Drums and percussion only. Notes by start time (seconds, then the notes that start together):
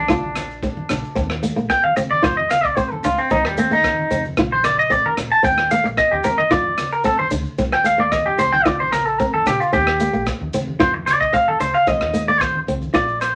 0.08 kick, cross-stick, low conga, maracas
0.23 high conga
0.35 cross-stick, closed hi-hat, low conga, maracas
0.50 maracas
0.63 kick, maracas
0.77 high conga
0.89 cross-stick, closed hi-hat, low conga, maracas
1.04 maracas
1.16 kick, maracas
1.30 cross-stick
1.43 closed hi-hat, maracas
1.57 maracas
1.70 kick, cross-stick, maracas
1.85 high conga
1.97 closed hi-hat, low conga, maracas
2.12 high conga
2.24 kick, cross-stick, low conga, maracas
2.39 high conga
2.50 cross-stick, closed hi-hat, low conga, maracas
2.64 kick, maracas
2.77 kick, maracas
2.92 high conga
3.04 closed hi-hat, low conga, maracas
3.18 maracas
3.30 kick, high conga, maracas
3.45 cross-stick
3.57 closed hi-hat, maracas
3.72 high conga, maracas
3.84 kick, cross-stick, high conga, maracas
3.99 high conga
4.11 closed hi-hat, low conga, maracas
4.25 low conga, maracas
4.37 kick, cross-stick, low conga, maracas
4.52 high conga
4.64 cross-stick, closed hi-hat, low conga, maracas
4.79 maracas
4.91 kick, maracas
5.06 high conga
5.17 cross-stick, closed hi-hat, low conga, maracas
5.31 maracas
5.44 kick, maracas
5.58 cross-stick
5.71 closed hi-hat, maracas
5.85 maracas
5.97 kick, cross-stick, maracas
6.13 high conga
6.24 closed hi-hat, low conga, maracas
6.39 high conga
6.51 kick, cross-stick, low conga, maracas
6.67 high conga
6.78 cross-stick, closed hi-hat, low conga, maracas
6.92 maracas
7.04 kick, maracas
7.20 high conga
7.31 closed hi-hat, low conga, maracas
7.45 maracas
7.58 kick, maracas
7.72 cross-stick
7.85 closed hi-hat, maracas
8.12 kick, cross-stick, maracas
8.27 high conga
8.39 closed hi-hat, low conga, maracas
8.54 high conga
8.65 kick, cross-stick, low conga, maracas
8.81 high conga
8.93 cross-stick, closed hi-hat, low conga, maracas
9.07 maracas
9.19 kick, maracas
9.34 high conga
9.46 cross-stick, closed hi-hat, low conga, maracas
9.60 maracas
9.73 kick, maracas
9.87 cross-stick
10.00 closed hi-hat, maracas
10.14 maracas
10.26 kick, cross-stick, maracas
10.41 high conga
10.53 closed hi-hat, low conga, maracas
10.68 high conga
10.80 kick, cross-stick, low conga, maracas
10.94 high conga
11.07 cross-stick, closed hi-hat, low conga, maracas
11.21 kick, maracas
11.34 kick, maracas
11.48 high conga
11.60 closed hi-hat, low conga, maracas
11.74 maracas
11.87 kick, high conga, maracas
12.01 cross-stick
12.14 closed hi-hat, maracas
12.28 maracas
12.41 kick, cross-stick, maracas
12.55 high conga
12.68 closed hi-hat, low conga
12.81 high conga, maracas
12.94 kick, cross-stick, maracas
13.08 maracas
13.21 cross-stick, closed hi-hat, maracas